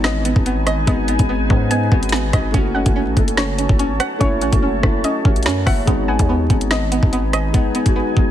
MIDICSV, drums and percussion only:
0, 0, Header, 1, 2, 480
1, 0, Start_track
1, 0, Tempo, 416667
1, 1007, Time_signature, 4, 2, 24, 8
1, 9572, End_track
2, 0, Start_track
2, 0, Title_t, "Drums"
2, 46, Note_on_c, 9, 38, 125
2, 161, Note_off_c, 9, 38, 0
2, 289, Note_on_c, 9, 42, 87
2, 404, Note_off_c, 9, 42, 0
2, 414, Note_on_c, 9, 36, 92
2, 530, Note_off_c, 9, 36, 0
2, 530, Note_on_c, 9, 42, 70
2, 646, Note_off_c, 9, 42, 0
2, 767, Note_on_c, 9, 37, 93
2, 768, Note_on_c, 9, 42, 91
2, 883, Note_off_c, 9, 37, 0
2, 883, Note_off_c, 9, 42, 0
2, 1007, Note_on_c, 9, 36, 118
2, 1007, Note_on_c, 9, 42, 77
2, 1122, Note_off_c, 9, 42, 0
2, 1123, Note_off_c, 9, 36, 0
2, 1245, Note_on_c, 9, 42, 83
2, 1361, Note_off_c, 9, 42, 0
2, 1373, Note_on_c, 9, 42, 87
2, 1375, Note_on_c, 9, 36, 91
2, 1488, Note_off_c, 9, 42, 0
2, 1490, Note_off_c, 9, 36, 0
2, 1728, Note_on_c, 9, 36, 93
2, 1843, Note_off_c, 9, 36, 0
2, 1967, Note_on_c, 9, 42, 89
2, 2082, Note_off_c, 9, 42, 0
2, 2208, Note_on_c, 9, 36, 98
2, 2323, Note_off_c, 9, 36, 0
2, 2335, Note_on_c, 9, 42, 58
2, 2410, Note_off_c, 9, 42, 0
2, 2410, Note_on_c, 9, 42, 59
2, 2447, Note_on_c, 9, 38, 108
2, 2490, Note_off_c, 9, 42, 0
2, 2490, Note_on_c, 9, 42, 56
2, 2562, Note_off_c, 9, 38, 0
2, 2605, Note_off_c, 9, 42, 0
2, 2687, Note_on_c, 9, 37, 90
2, 2688, Note_on_c, 9, 36, 102
2, 2688, Note_on_c, 9, 42, 90
2, 2803, Note_off_c, 9, 36, 0
2, 2803, Note_off_c, 9, 37, 0
2, 2803, Note_off_c, 9, 42, 0
2, 2927, Note_on_c, 9, 36, 120
2, 2927, Note_on_c, 9, 42, 78
2, 3042, Note_off_c, 9, 42, 0
2, 3043, Note_off_c, 9, 36, 0
2, 3293, Note_on_c, 9, 42, 86
2, 3295, Note_on_c, 9, 36, 90
2, 3409, Note_off_c, 9, 42, 0
2, 3411, Note_off_c, 9, 36, 0
2, 3648, Note_on_c, 9, 36, 95
2, 3648, Note_on_c, 9, 42, 73
2, 3764, Note_off_c, 9, 36, 0
2, 3764, Note_off_c, 9, 42, 0
2, 3777, Note_on_c, 9, 42, 75
2, 3887, Note_on_c, 9, 38, 125
2, 3892, Note_off_c, 9, 42, 0
2, 4002, Note_off_c, 9, 38, 0
2, 4129, Note_on_c, 9, 42, 88
2, 4244, Note_off_c, 9, 42, 0
2, 4254, Note_on_c, 9, 36, 92
2, 4370, Note_off_c, 9, 36, 0
2, 4371, Note_on_c, 9, 42, 72
2, 4486, Note_off_c, 9, 42, 0
2, 4607, Note_on_c, 9, 37, 94
2, 4608, Note_on_c, 9, 42, 86
2, 4723, Note_off_c, 9, 37, 0
2, 4723, Note_off_c, 9, 42, 0
2, 4847, Note_on_c, 9, 42, 74
2, 4848, Note_on_c, 9, 36, 119
2, 4963, Note_off_c, 9, 36, 0
2, 4963, Note_off_c, 9, 42, 0
2, 5086, Note_on_c, 9, 42, 80
2, 5201, Note_off_c, 9, 42, 0
2, 5214, Note_on_c, 9, 42, 87
2, 5216, Note_on_c, 9, 36, 90
2, 5329, Note_off_c, 9, 42, 0
2, 5331, Note_off_c, 9, 36, 0
2, 5568, Note_on_c, 9, 36, 92
2, 5568, Note_on_c, 9, 37, 105
2, 5683, Note_off_c, 9, 37, 0
2, 5684, Note_off_c, 9, 36, 0
2, 5807, Note_on_c, 9, 42, 91
2, 5922, Note_off_c, 9, 42, 0
2, 6048, Note_on_c, 9, 36, 101
2, 6163, Note_off_c, 9, 36, 0
2, 6175, Note_on_c, 9, 42, 43
2, 6250, Note_off_c, 9, 42, 0
2, 6250, Note_on_c, 9, 42, 57
2, 6288, Note_on_c, 9, 38, 108
2, 6330, Note_off_c, 9, 42, 0
2, 6330, Note_on_c, 9, 42, 70
2, 6403, Note_off_c, 9, 38, 0
2, 6446, Note_off_c, 9, 42, 0
2, 6528, Note_on_c, 9, 36, 102
2, 6528, Note_on_c, 9, 37, 92
2, 6528, Note_on_c, 9, 46, 64
2, 6643, Note_off_c, 9, 36, 0
2, 6643, Note_off_c, 9, 37, 0
2, 6643, Note_off_c, 9, 46, 0
2, 6768, Note_on_c, 9, 36, 121
2, 6768, Note_on_c, 9, 42, 76
2, 6883, Note_off_c, 9, 36, 0
2, 6883, Note_off_c, 9, 42, 0
2, 7134, Note_on_c, 9, 42, 85
2, 7136, Note_on_c, 9, 36, 87
2, 7249, Note_off_c, 9, 42, 0
2, 7251, Note_off_c, 9, 36, 0
2, 7488, Note_on_c, 9, 36, 94
2, 7488, Note_on_c, 9, 42, 75
2, 7603, Note_off_c, 9, 36, 0
2, 7603, Note_off_c, 9, 42, 0
2, 7616, Note_on_c, 9, 42, 72
2, 7726, Note_on_c, 9, 38, 126
2, 7731, Note_off_c, 9, 42, 0
2, 7842, Note_off_c, 9, 38, 0
2, 7969, Note_on_c, 9, 42, 88
2, 8084, Note_off_c, 9, 42, 0
2, 8094, Note_on_c, 9, 36, 90
2, 8210, Note_off_c, 9, 36, 0
2, 8211, Note_on_c, 9, 42, 73
2, 8326, Note_off_c, 9, 42, 0
2, 8447, Note_on_c, 9, 37, 93
2, 8448, Note_on_c, 9, 42, 89
2, 8562, Note_off_c, 9, 37, 0
2, 8563, Note_off_c, 9, 42, 0
2, 8687, Note_on_c, 9, 36, 121
2, 8687, Note_on_c, 9, 42, 75
2, 8802, Note_off_c, 9, 36, 0
2, 8802, Note_off_c, 9, 42, 0
2, 8925, Note_on_c, 9, 42, 81
2, 9041, Note_off_c, 9, 42, 0
2, 9053, Note_on_c, 9, 42, 84
2, 9055, Note_on_c, 9, 36, 91
2, 9168, Note_off_c, 9, 42, 0
2, 9170, Note_off_c, 9, 36, 0
2, 9408, Note_on_c, 9, 36, 93
2, 9523, Note_off_c, 9, 36, 0
2, 9572, End_track
0, 0, End_of_file